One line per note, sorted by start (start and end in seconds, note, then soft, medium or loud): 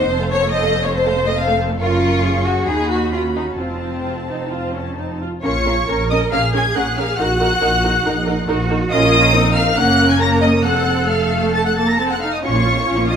0.00 0.10 D#2 medium
0.00 0.31 C5 medium
0.00 0.11 D#5 medium
0.00 0.10 F#5 soft
0.09 1.77 F1 medium
0.09 1.77 F2 medium
0.09 0.20 C4 medium
0.09 0.20 C5 medium
0.09 0.20 A5 medium
0.21 0.32 A3 medium
0.21 0.32 A4 soft
0.21 0.31 F5 soft
0.31 0.43 C4 medium
0.31 0.43 C5 medium
0.31 0.53 C#5 medium
0.31 0.42 A5 soft
0.42 0.53 A3 medium
0.42 0.53 A4 medium
0.42 0.53 F5 soft
0.52 0.63 C4 medium
0.52 0.63 C5 medium
0.52 0.84 D#5 medium
0.52 0.63 A5 soft
0.63 0.74 A3 medium
0.63 0.74 A4 medium
0.63 0.74 F5 soft
0.74 0.85 C4 soft
0.74 0.85 C5 soft
0.74 0.85 A5 soft
0.85 0.96 A3 soft
0.85 0.96 A4 soft
0.85 0.95 C#5 medium
0.85 0.96 F5 soft
0.95 1.06 C4 medium
0.95 1.27 C5 medium
0.95 1.06 C5 medium
0.95 1.06 A5 medium
1.06 1.17 A3 soft
1.06 1.17 A4 soft
1.06 1.18 F5 medium
1.17 1.28 C4 medium
1.17 1.27 C5 medium
1.17 1.28 A5 soft
1.27 1.38 A3 soft
1.27 1.38 A4 soft
1.27 1.38 D#5 medium
1.27 1.39 F5 medium
1.38 1.48 C4 soft
1.38 1.48 C5 medium
1.38 1.60 F5 medium
1.38 1.48 A5 soft
1.48 1.59 A3 soft
1.48 1.59 A4 soft
1.48 1.59 F5 soft
1.59 1.71 C4 soft
1.59 1.71 C5 soft
1.59 1.70 A5 soft
1.70 1.81 A3 soft
1.70 1.81 A4 soft
1.70 1.81 F5 soft
1.80 2.64 F#1 medium
1.80 2.64 F#2 medium
1.80 2.64 C#4 medium
1.80 2.43 F4 medium
1.80 2.22 A#4 medium
1.80 2.64 C#6 medium
2.24 2.68 G#4 soft
2.46 2.68 F#4 medium
2.67 3.59 D#2 soft
2.67 3.12 D#4 soft
2.67 3.59 F#4 soft
2.67 2.90 G#4 medium
2.67 3.59 B5 medium
2.90 3.12 F#4 medium
3.13 3.59 C#4 soft
3.13 3.21 F4 medium
3.36 3.44 D#4 medium
3.58 5.21 F1 soft
3.58 5.20 F2 soft
3.58 5.18 C4 medium
3.58 4.01 C4 soft
3.58 4.01 F4 soft
3.58 5.20 A5 soft
4.05 4.13 F4 medium
4.29 4.52 D#4 soft
4.52 4.75 F4 medium
4.75 4.98 C#4 soft
4.98 5.22 D#4 soft
5.21 5.29 F4 soft
5.43 5.83 A#1 medium
5.43 5.52 C#4 medium
5.43 5.85 F4 medium
5.43 5.51 A#4 medium
5.43 6.06 C#5 medium
5.43 6.06 C#6 medium
5.66 5.74 C#4 medium
5.66 5.74 A#4 medium
5.88 6.27 A#1 medium
5.88 5.97 C#4 medium
5.88 6.33 A#4 medium
5.88 5.97 A#4 medium
6.10 6.19 C#4 medium
6.10 6.19 A#4 soft
6.10 6.32 D#5 medium
6.10 6.18 D#6 medium
6.32 6.71 A#1 medium
6.32 6.40 C#4 medium
6.32 7.20 G#4 medium
6.32 6.40 A#4 medium
6.32 6.41 F5 medium
6.32 6.54 F6 loud
6.53 6.61 C#4 medium
6.53 6.61 A#4 medium
6.53 6.63 G#5 medium
6.53 6.76 G#6 loud
6.75 7.15 A#1 medium
6.75 6.84 C#4 medium
6.75 6.83 A#4 medium
6.75 6.98 F#5 medium
6.75 6.98 F#6 medium
6.97 7.06 C#4 medium
6.97 7.05 A#4 medium
6.97 7.19 F5 medium
6.97 7.20 F6 medium
7.19 7.58 A#1 medium
7.19 7.27 D#4 medium
7.19 8.04 F#4 medium
7.19 7.27 A#4 medium
7.19 8.66 F#5 medium
7.19 8.70 F#6 loud
7.40 7.48 D#4 medium
7.40 7.48 A#4 medium
7.62 8.00 A#1 medium
7.62 7.70 D#4 medium
7.62 7.70 A#4 medium
7.83 7.91 D#4 medium
7.83 7.92 A#4 medium
8.05 8.43 A#1 medium
8.05 8.13 D#4 medium
8.05 8.48 D#4 medium
8.05 8.13 A#4 medium
8.26 8.34 D#4 medium
8.26 8.34 A#4 medium
8.48 8.87 A#1 medium
8.48 8.57 D#4 medium
8.48 8.90 F#4 medium
8.48 8.57 A#4 medium
8.70 8.78 D#4 medium
8.70 8.78 A#4 medium
8.91 9.74 A#1 medium
8.91 9.31 C#4 medium
8.91 9.34 F4 medium
8.91 9.73 A#4 medium
8.91 9.52 D#5 medium
8.91 9.52 D#6 loud
9.34 9.77 C4 medium
9.34 9.77 D#4 medium
9.56 9.77 F5 medium
9.56 9.78 F6 loud
9.76 10.63 F#1 medium
9.76 10.19 A#3 medium
9.76 10.64 C#4 medium
9.76 10.19 A#4 medium
9.76 10.09 F#5 medium
9.76 10.10 F#6 loud
10.09 10.20 G#5 medium
10.09 10.21 G#6 loud
10.19 10.63 A#3 medium
10.19 10.63 A#4 medium
10.19 10.42 A#5 loud
10.19 10.29 A#6 loud
10.42 10.50 D#5 medium
10.42 10.65 D#6 medium
10.64 12.24 F1 medium
10.64 11.10 C4 medium
10.64 12.19 A4 medium
10.64 11.10 A4 medium
10.64 11.08 F#5 medium
10.64 11.10 F#6 medium
11.09 11.73 A3 medium
11.09 11.54 F5 medium
11.09 11.55 F6 medium
11.54 11.65 A5 medium
11.54 11.59 A6 medium
11.66 11.70 F#5 medium
11.66 11.77 F#6 medium
11.77 11.99 A#3 medium
11.77 11.88 A5 medium
11.77 11.88 A6 medium
11.88 11.99 A#5 medium
11.88 12.00 A#6 medium
11.98 12.21 C4 medium
11.98 12.10 A5 medium
11.98 12.04 A6 medium
12.11 12.22 F#5 medium
12.11 12.23 F#6 medium
12.21 12.44 D#4 medium
12.21 12.33 F5 medium
12.21 12.33 F6 medium
12.32 12.37 D#5 medium
12.32 12.38 D#6 medium
12.43 12.83 A#1 medium
12.43 12.53 C#4 medium
12.43 12.54 F4 medium
12.43 12.85 F4 medium
12.43 13.08 C#5 medium
12.43 13.09 C#6 medium
12.54 12.66 A#3 medium
12.54 12.64 C#4 medium
12.65 12.76 C#4 medium
12.65 12.77 F4 medium
12.76 12.88 A#3 medium
12.76 12.86 C#4 medium
12.87 13.16 A#1 medium
12.87 12.96 C#4 medium
12.87 12.98 F4 medium
12.87 13.16 F4 medium
12.97 13.09 A#3 medium
12.97 13.08 C#4 medium
13.09 13.16 C#4 soft
13.09 13.16 F4 medium
13.09 13.16 D#5 medium
13.09 13.16 D#6 medium